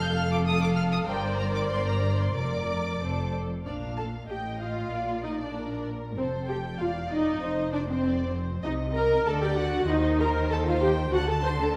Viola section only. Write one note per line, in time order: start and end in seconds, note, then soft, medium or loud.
0.00 1.06 A4 medium
1.08 1.70 C5 medium
1.71 2.36 A#4 soft
2.35 3.31 D5 soft
3.66 3.95 D4 soft
3.98 4.06 A4 soft
4.30 4.38 G4 soft
4.60 5.22 F4 medium
5.24 5.39 D#4 soft
5.40 5.86 D4 soft
6.18 6.26 C4 medium
6.49 6.57 G4 medium
6.80 6.88 F4 medium
7.12 7.72 D#4 medium
7.73 7.79 D4 medium
7.89 8.34 C4 medium
8.65 8.73 D#4 medium
8.95 9.26 A#4 medium
9.27 9.42 A4 medium
9.44 9.59 G4 medium
9.59 9.89 F#4 medium
9.89 10.20 D#4 medium
10.20 10.51 A#4 medium
10.51 10.66 A4 medium
10.66 10.82 F4 medium
10.81 10.89 G4 medium
11.12 11.18 F#4 medium
11.29 11.35 A4 medium
11.44 11.50 C5 medium
11.61 11.76 A4 medium